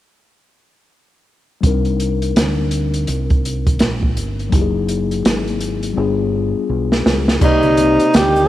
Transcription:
1.61 2.32 C2 medium
1.61 4.47 G3 medium
1.61 4.48 C4 medium
1.61 4.49 D4 medium
1.61 kick medium
1.61 closed hi-hat medium
1.65 4.49 D#4 medium
1.65 4.50 A#4 medium
1.85 closed hi-hat soft
2.00 closed hi-hat medium
2.22 closed hi-hat soft
2.36 3.04 D2 medium
2.36 snare medium
2.36 closed hi-hat medium
2.71 closed hi-hat medium
2.94 closed hi-hat medium
3.07 3.77 C2 medium
3.07 closed hi-hat medium
3.30 kick medium
3.30 closed hi-hat soft
3.45 closed hi-hat medium
3.66 kick medium
3.66 closed hi-hat medium
3.79 4.15 A#1 medium
3.79 snare medium
3.79 closed hi-hat medium
4.02 kick medium
4.16 4.51 G1 medium
4.16 closed hi-hat medium
4.39 closed hi-hat soft
4.49 5.21 F#1 medium
4.49 5.93 F#3 medium
4.49 5.93 A#3 medium
4.49 5.94 D#4 medium
4.49 kick loud
4.49 closed hi-hat medium
4.54 5.95 E4 medium
4.54 4.62 G4 medium
4.61 5.98 G#4 medium
4.88 closed hi-hat medium
5.11 closed hi-hat soft
5.25 5.94 G#1 medium
5.25 snare medium
5.25 closed hi-hat medium
5.47 closed hi-hat soft
5.60 closed hi-hat medium
5.83 closed hi-hat medium
5.94 6.52 G1 medium
5.94 7.37 G3 medium
5.94 7.38 B3 medium
5.94 7.39 D4 medium
5.98 7.39 F4 medium
5.98 7.40 G#4 medium
6.55 muted fingered electric bass stroke soft
6.70 7.04 B1 medium
6.92 snare medium
7.06 7.40 C#2 medium
7.06 snare medium
7.28 snare medium
7.40 7.97 C2 loud
7.40 8.16 C3 medium
7.40 8.48 A#3 medium
7.40 8.48 C4 medium
7.40 8.48 D#4 medium
7.40 8.48 G4 medium
7.40 8.48 D5 medium
7.40 kick loud
7.40 crash medium
7.40 shaker medium
7.44 8.18 D#4 medium
7.63 high conga soft
7.63 shaker soft
7.77 closed hi-hat medium
7.77 high conga soft
7.77 shaker soft
8.00 closed hi-hat medium
8.00 shaker soft
8.13 8.48 D2 medium
8.13 8.46 D#3 medium
8.13 8.48 G4 medium
8.13 snare loud
8.13 closed hi-hat medium
8.13 shaker medium
8.36 shaker soft
8.45 8.48 F3 medium

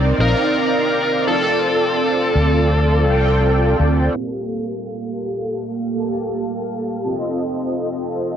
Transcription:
0.00 0.11 C2 loud
0.00 0.14 C4 medium
0.00 0.14 D#4 medium
0.00 0.15 A#4 medium
0.00 0.15 D5 loud
0.18 0.33 A#1 medium
0.18 1.23 C4 medium
0.18 1.23 D#4 medium
0.18 1.24 A#4 medium
0.18 1.24 A#4 loud
0.18 1.24 F5 medium
1.26 3.03 C4 medium
1.26 3.04 F4 medium
1.26 3.77 A4 medium
1.26 3.04 A4 medium
1.26 3.05 D5 loud
2.35 3.08 D2 loud
3.06 3.73 C2 loud
3.06 4.12 C4 medium
3.06 4.12 F4 medium
3.06 4.13 A4 medium
3.06 4.13 G5 medium
3.80 4.07 D2 loud
4.14 5.92 A#3 medium
4.14 5.93 G4 medium
5.95 7.01 A#3 medium
5.95 7.01 G4 medium
5.95 7.01 A4 medium
5.95 7.02 A5 medium
7.04 8.37 C4 medium
7.04 8.37 F4 medium
7.04 8.37 A4 medium
7.04 8.37 D#5 medium

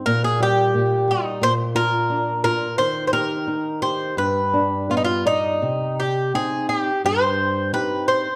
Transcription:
0.06 0.73 A#2 medium
0.06 0.22 A#4 medium
0.24 0.41 G#4 medium
0.40 0.74 G3 medium
0.40 1.12 G4 medium
0.74 1.07 A#2 medium
1.08 1.41 G3 medium
1.08 1.44 D#4 medium
1.42 2.74 A#2 medium
1.42 1.52 C5 loud
1.75 2.09 F4 medium
1.75 2.43 A#4 loud
2.10 2.43 D4 medium
2.44 2.78 F4 medium
2.44 2.78 A#4 medium
2.78 4.14 D#3 medium
2.78 3.04 C5 medium
3.07 3.13 C5 medium
3.13 3.46 G4 medium
3.13 3.82 A#4 medium
3.47 3.81 D#4 medium
3.82 4.16 G4 soft
3.82 4.15 C5 medium
4.17 5.58 G2 medium
4.17 5.22 B4 medium
4.54 4.88 D4 medium
4.90 5.25 B3 soft
4.90 4.96 F4 medium
4.97 5.04 D#4 medium
5.04 5.26 F4 medium
5.26 6.01 D#4 medium
5.26 5.61 D5 soft
5.62 6.31 C3 medium
6.00 6.32 G4 medium
6.34 6.90 C4 soft
6.34 6.90 D#4 soft
6.34 6.67 G#4 medium
6.34 6.90 G5 soft
6.69 7.01 G4 medium
7.04 7.71 G2 medium
7.04 7.73 C5 medium
7.73 8.27 C4 soft
7.73 8.27 D#4 soft
7.73 8.27 G4 soft
7.73 8.08 B4 medium
8.08 8.36 C5 medium

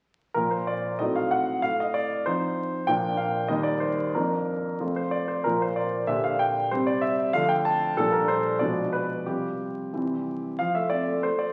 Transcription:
0.34 0.97 A#2 soft
0.34 0.95 F3 soft
0.34 0.96 A#3 soft
0.34 0.95 F4 soft
0.34 0.51 A#4 medium
0.51 0.67 C5 medium
0.67 0.99 D5 medium
0.99 1.60 A2 soft
0.99 1.58 F#3 soft
0.99 1.58 C4 soft
0.99 1.59 D#4 soft
0.99 1.15 D#5 medium
1.16 1.31 F5 medium
1.31 1.62 F#5 medium
1.62 2.23 A2 soft
1.62 1.78 F5 medium
1.80 1.94 D#5 medium
1.94 2.25 D5 medium
2.26 2.84 F3 soft
2.26 2.84 C4 soft
2.26 2.84 D#4 soft
2.26 2.87 C5 medium
2.87 3.48 A#2 soft
2.87 3.46 F3 soft
2.87 3.46 A#3 soft
2.87 3.46 D4 soft
2.87 3.18 G5 medium
3.17 3.49 F5 medium
3.48 4.12 D#2 soft
3.48 4.10 G3 soft
3.48 4.10 A#3 soft
3.48 4.10 D#4 soft
3.48 3.65 D#5 medium
3.63 3.80 D5 medium
3.80 4.13 C5 medium
4.15 4.78 F2 soft
4.15 4.75 F3 soft
4.15 4.76 A#3 soft
4.15 4.76 D4 soft
4.15 4.79 A#4 medium
4.80 5.43 F2 soft
4.80 5.41 F3 soft
4.80 5.41 A3 soft
4.80 5.41 F4 soft
4.96 5.12 C5 medium
5.11 5.28 D5 medium
5.28 5.44 C5 medium
5.44 6.06 A#2 soft
5.44 6.05 F3 soft
5.44 6.05 A#3 soft
5.44 6.05 F4 soft
5.44 5.60 A#4 medium
5.62 5.77 C5 medium
5.76 6.08 D5 medium
6.07 6.68 A#2 soft
6.07 6.66 D3 soft
6.07 6.67 D4 soft
6.07 6.67 G4 soft
6.07 6.23 E5 medium
6.24 6.39 F5 medium
6.39 6.71 G5 medium
6.71 7.32 C3 soft
6.71 7.30 G3 soft
6.71 7.30 C4 soft
6.71 7.31 G4 soft
6.71 6.87 C5 medium
6.87 7.02 D5 medium
7.01 7.33 E5 medium
7.33 7.95 D3 medium
7.33 7.92 F3 soft
7.33 7.93 A3 soft
7.33 7.93 D4 soft
7.33 7.49 F5 medium
7.49 7.65 G5 medium
7.65 7.96 A5 medium
7.97 8.58 A#2 soft
7.97 8.56 F3 soft
7.97 8.57 G3 soft
7.97 8.57 D4 soft
7.97 8.12 A4 medium
8.12 8.28 A#4 medium
8.28 8.60 C5 medium
8.59 9.24 B2 soft
8.59 9.22 F3 soft
8.59 9.22 G#3 soft
8.59 9.22 D4 soft
8.59 8.92 D5 medium
8.93 9.26 B4 medium
9.26 9.91 C3 soft
9.26 9.89 F3 soft
9.26 9.89 G3 soft
9.26 9.90 C4 soft
9.26 10.26 G4 soft
9.94 10.57 C3 soft
9.94 10.55 E3 soft
9.94 10.55 G3 soft
9.94 10.56 C4 soft
10.59 11.21 F3 soft
10.59 10.75 F5 medium
10.75 11.00 A3 soft
10.75 10.91 E5 medium
10.90 11.16 C4 soft
10.90 11.22 D5 medium
11.07 11.22 A3 soft
11.23 11.38 A3 soft
11.23 11.39 C5 medium
11.39 11.53 A3 soft
11.39 11.53 D5 medium

